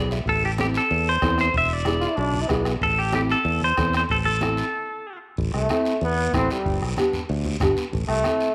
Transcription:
Already playing: B1 B3 E4 G#4
0.11 E5, short guiro
0.26 A1 A4, bombo low, high conga, long guiro
0.43 G4, high conga
0.58 C4 E4 G4 A4, bombo rim, high conga, short guiro
0.74 A4, short guiro
0.90 E2, high conga, long guiro
1.09 C5
1.22 E2 C4 E4 A4, bombo low, bombo rim, high conga, short guiro
1.38 C5, bombo rim, short guiro
1.54 E1 E5, bombo low, high conga, long guiro
1.73 D5
1.85 B3 E4 G#4, bombo rim, high conga, short guiro
2.01 F4, short guiro
2.08 E4
2.16 B1 D4, high conga, long guiro
2.33 high conga
2.42 E4
2.49 B1 B3 E4 G#4, bombo low, bombo rim, high conga, short guiro
2.65 bombo rim, short guiro
2.81 A1 A4, bombo low, high conga, long guiro
2.99 G4
3.12 C4 E4 G4 A4, bombo rim, high conga, short guiro
3.29 A4, short guiro
3.45 E2, high conga, long guiro
3.61 C5, high conga
3.77 E2 C4 E4 A4, bombo low, bombo rim, high conga, short guiro
3.93 C5, bombo rim, short guiro
4.09 A1 A4, bombo low, high conga, long guiro
4.25 A4, high conga
4.41 C4 E4 A4, bombo rim, high conga, short guiro
4.57 short guiro
5.37 A1, bombo low, long guiro
5.54 C2 A3, bombo rim
5.69 C4 E4 A4, bombo rim, high conga, short guiro
5.85 short guiro
6.01 E2 B3, long guiro
6.33 A1 C4 E4 A4, bombo low, bombo rim, high conga, short guiro
6.51 G3, short guiro
6.66 G1, bombo low, long guiro
6.81 B1, bombo rim
6.96 B3 D4 G4, bombo rim, high conga, short guiro
7.13 low conga, short guiro
7.29 D2, long guiro
7.45 high conga
7.60 G1 B3 D4 G4, bombo low, bombo rim, high conga, low conga, short guiro
7.77 short guiro
7.93 A1, bombo low, long guiro
8.08 C2 A3, bombo rim
8.24 C4 E4 A4, bombo rim, high conga, short guiro
8.40 short guiro

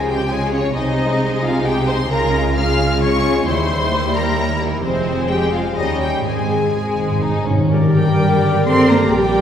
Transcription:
Already playing: C#2 C#3 F3 G#3 F4
0.08 C#4 G4 G5
0.29 G#3 F4 G#4 C#5 G#5
0.52 C#4 F4 C#5
0.74 C2 C3 G#3 D#4 D#5
0.98 C4
1.21 D#4
1.43 G#3 F4 F5
1.65 G4 G#4 G5
1.88 D#4 C5 C6
2.10 C#2 C#3 G#3 F4 A#4 A#5
2.34 G#3
2.56 G#3 F4 F5 F6
2.79 G#4
3.02 G#3 F4 C#5 C#6
3.25 F4
3.46 D#2 D#3 G3 E4 C5 C6
3.70 G3
3.93 E4
4.16 G4 A#4 A#5
4.39 C#5
4.61 A#3 E4 A#4
4.84 F1 F2 F3 G#3 C4 C5
5.08 G#3
5.30 F4 G4 G5
5.53 F4 G#4 F5
5.76 D#2 D#3 G3 C#4 D#4 D#5
6.01 C#4 G4 G5
6.25 G#1 G#2 G#3 C4 G#4 G#5
6.34 G#2
6.41 G#2
6.49 G#2 D#3
6.57 G#2
6.65 G#2
6.73 G#2 G#3 C4
6.81 G#2
6.89 G#2
6.96 G#2
7.00 G#2 G#4
7.11 G#2
7.19 G#2 D#4
7.23 G#2 C4
7.35 G#2
7.42 G#2
7.47 G#3 C#4
7.51 G#2
7.58 G#2
7.71 G2 G4 A#4 D5
7.89 D3
7.95 G3 G5
8.05 D4
8.20 A#3 A#4
8.36 D3
8.52 A#3
8.66 C4 A4 C6
8.83 A#3
8.90 A#3 A#5
8.99 G4
9.12 A#1 A#2 G3 G4 D5 G5

